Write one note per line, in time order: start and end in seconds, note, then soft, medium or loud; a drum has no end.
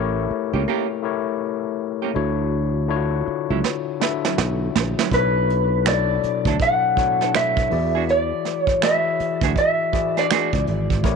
0.00 0.26 A1 medium
0.00 1.03 A3 medium
0.00 1.03 E4 medium
0.00 1.04 G4 medium
0.00 1.05 A#4 medium
0.00 1.05 C#5 medium
0.31 muted fretless electric bass stroke soft
0.53 0.64 C#2 medium
0.53 0.63 A#3 soft
0.53 0.63 C#4 soft
0.53 0.62 G4 medium
0.68 0.86 A#3 medium
0.68 0.87 C#4 medium
0.68 0.87 G4 medium
1.03 1.89 A3 medium
1.03 1.89 E4 medium
1.03 1.89 G4 medium
1.03 1.90 A#4 medium
1.03 1.90 C#5 medium
2.02 2.11 A#3 soft
2.02 2.11 C#4 soft
2.02 2.10 G4 soft
2.14 3.22 D2 medium
2.14 2.74 D3 medium
2.14 2.75 D4 medium
2.14 2.75 E4 medium
2.14 2.76 F#4 medium
2.14 2.76 C#5 medium
2.88 3.74 D3 medium
2.88 3.75 D4 medium
2.88 3.75 E4 medium
2.88 2.98 F4 medium
2.88 3.75 C#5 medium
2.96 3.78 F#4 medium
3.27 muted fretless electric bass stroke soft
3.50 3.61 C#2 medium
3.50 3.60 F#3 soft
3.50 3.59 C#4 medium
3.50 3.59 E4 medium
3.64 snare soft
4.00 4.86 D3 medium
4.00 4.86 D4 medium
4.00 4.86 E4 medium
4.00 4.87 F#4 medium
4.00 4.87 E5 medium
4.00 snare medium
4.25 4.34 F#3 soft
4.25 4.33 C#4 soft
4.25 4.33 E4 medium
4.25 snare medium
4.38 4.68 B1 medium
4.38 snare medium
4.76 4.94 A#1 medium
4.76 snare medium
4.99 5.08 F#3 soft
4.99 5.08 C#4 medium
4.99 5.07 E4 medium
4.99 snare medium
5.11 6.19 B1 medium
5.11 5.71 B2 medium
5.11 5.71 F#3 medium
5.11 5.72 D4 medium
5.11 5.72 E4 medium
5.11 5.72 A4 medium
5.11 5.88 B4 medium
5.11 5.20 C5 medium
5.11 kick medium
5.11 closed hi-hat medium
5.20 5.76 C#5 medium
5.50 closed hi-hat medium
5.84 6.71 B2 medium
5.84 6.71 F#3 medium
5.84 6.71 D4 medium
5.84 6.71 E4 medium
5.84 6.72 A4 medium
5.84 5.94 C#5 medium
5.84 finger snap medium
5.84 snare medium
5.84 closed hi-hat medium
5.89 6.62 D5 medium
5.93 6.75 D5 medium
6.23 muted fretless electric bass stroke soft
6.23 closed hi-hat medium
6.45 6.57 D2 medium
6.45 6.56 E4 medium
6.45 6.55 A4 medium
6.45 kick medium
6.49 6.56 D4 soft
6.60 7.36 F#5 loud
6.60 kick medium
6.60 closed hi-hat medium
6.96 7.70 B2 medium
6.96 7.71 F#3 medium
6.96 7.71 D4 medium
6.96 7.69 E4 medium
6.96 7.71 A4 medium
6.96 7.71 C#5 medium
6.96 kick medium
6.96 closed hi-hat medium
7.21 7.30 D4 soft
7.21 7.30 E4 soft
7.21 7.29 A4 soft
7.21 snare soft
7.35 8.10 E5 medium
7.35 finger snap medium
7.35 snare loud
7.35 closed hi-hat medium
7.57 kick medium
7.70 8.31 E2 medium
7.70 8.63 E3 medium
7.70 8.63 E4 medium
7.70 8.63 F#4 medium
7.70 8.64 G#4 medium
7.70 8.64 D5 medium
7.70 open hi-hat soft
7.95 8.04 D4 soft
7.95 8.04 F#4 medium
7.95 8.03 G#4 medium
8.09 8.63 D5 medium
8.09 closed hi-hat medium
8.45 snare soft
8.45 closed hi-hat medium
8.63 8.84 C#5 medium
8.67 kick medium
8.81 9.67 E3 medium
8.81 9.67 E4 medium
8.81 9.68 F#4 medium
8.81 9.68 G#4 medium
8.81 9.68 E5 medium
8.81 9.57 E5 medium
8.81 finger snap medium
8.81 snare medium
8.81 closed hi-hat medium
9.20 muted fretless electric bass stroke soft
9.20 closed hi-hat medium
9.41 9.53 D2 medium
9.41 9.52 D4 soft
9.41 9.52 F#4 medium
9.41 9.51 G#4 medium
9.41 kick loud
9.56 10.19 E5 medium
9.56 kick medium
9.56 closed hi-hat medium
9.92 10.78 E3 medium
9.92 10.78 E4 medium
9.92 10.79 F#4 medium
9.92 10.79 G#4 medium
9.92 10.79 D5 medium
9.92 kick medium
9.92 closed hi-hat medium
10.17 10.26 D4 soft
10.17 10.26 F#4 soft
10.17 10.25 G#4 soft
10.17 10.65 D5 medium
10.17 snare soft
10.31 10.49 D4 medium
10.31 10.50 F#4 medium
10.31 10.50 G#4 medium
10.31 finger snap medium
10.31 snare medium
10.31 closed hi-hat medium
10.53 10.65 C#2 medium
10.53 kick medium
10.67 11.05 G#1 medium
10.67 closed hi-hat medium
10.90 kick medium
11.03 11.16 A1 medium
11.03 11.16 A3 medium
11.03 11.16 E4 medium
11.03 11.16 G4 medium
11.03 11.16 A#4 medium
11.03 11.16 C#5 medium
11.03 kick loud
11.03 closed hi-hat medium